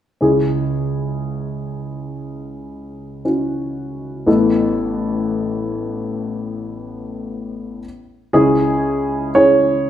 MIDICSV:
0, 0, Header, 1, 3, 480
1, 0, Start_track
1, 0, Key_signature, 4, "minor"
1, 0, Tempo, 1016949
1, 97, Time_signature, 4, 2, 24, 8
1, 4672, End_track
2, 0, Start_track
2, 0, Title_t, "Grand piano"
2, 0, Program_c, 0, 0
2, 3933, Note_on_c, 0, 68, 55
2, 4413, Note_on_c, 0, 73, 68
2, 4430, Note_off_c, 0, 68, 0
2, 4672, Note_off_c, 0, 73, 0
2, 4672, End_track
3, 0, Start_track
3, 0, Title_t, "Upright piano"
3, 0, Program_c, 1, 0
3, 98, Note_on_c, 1, 61, 41
3, 100, Note_on_c, 1, 64, 37
3, 101, Note_on_c, 1, 49, 39
3, 102, Note_on_c, 1, 37, 37
3, 105, Note_on_c, 1, 68, 45
3, 176, Control_c, 1, 64, 127
3, 1519, Note_off_c, 1, 61, 0
3, 1520, Note_off_c, 1, 64, 0
3, 1522, Note_off_c, 1, 68, 0
3, 1534, Note_on_c, 1, 61, 32
3, 1535, Note_on_c, 1, 64, 29
3, 1537, Note_on_c, 1, 66, 36
3, 2000, Note_off_c, 1, 49, 0
3, 2001, Note_off_c, 1, 37, 0
3, 2009, Note_off_c, 1, 64, 0
3, 2013, Note_on_c, 1, 59, 46
3, 2015, Note_on_c, 1, 33, 46
3, 2015, Note_on_c, 1, 45, 43
3, 2016, Note_off_c, 1, 61, 0
3, 2016, Note_on_c, 1, 64, 42
3, 2017, Note_off_c, 1, 66, 0
3, 2019, Note_on_c, 1, 69, 49
3, 2023, Control_c, 1, 64, 0
3, 2113, Control_c, 1, 64, 127
3, 3676, Note_off_c, 1, 59, 0
3, 3677, Note_off_c, 1, 33, 0
3, 3678, Note_off_c, 1, 45, 0
3, 3678, Note_off_c, 1, 64, 0
3, 3679, Note_off_c, 1, 69, 0
3, 3704, Control_c, 1, 64, 0
3, 3935, Note_on_c, 1, 61, 60
3, 3936, Note_on_c, 1, 37, 41
3, 3937, Note_on_c, 1, 49, 45
3, 3937, Note_on_c, 1, 64, 54
3, 3937, Note_on_c, 1, 68, 72
3, 4026, Control_c, 1, 64, 127
3, 4392, Note_off_c, 1, 61, 0
3, 4393, Note_off_c, 1, 64, 0
3, 4393, Note_off_c, 1, 68, 0
3, 4414, Note_on_c, 1, 61, 44
3, 4415, Note_on_c, 1, 64, 44
3, 4417, Note_on_c, 1, 68, 53
3, 4672, Note_off_c, 1, 37, 0
3, 4672, Note_off_c, 1, 49, 0
3, 4672, Note_off_c, 1, 61, 0
3, 4672, Note_off_c, 1, 64, 0
3, 4672, Note_off_c, 1, 68, 0
3, 4672, End_track
0, 0, End_of_file